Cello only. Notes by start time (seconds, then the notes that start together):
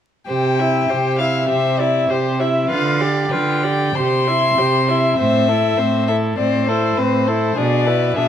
0.28 C3
0.90 C3
1.49 C3
2.10 C3
2.71 D3
3.32 D3
3.96 C3
4.58 C3
5.19 A2
5.78 A2
6.37 A2
6.97 A2
7.56 B2
8.16 B2